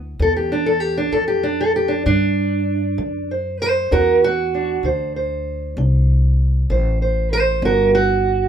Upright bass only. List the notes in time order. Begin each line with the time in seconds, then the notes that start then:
Already playing: D2
0.19 E2
1.12 F2
2.06 G2
2.98 F#2
3.92 E2
4.83 D2
5.77 C2
6.70 A1
7.62 G1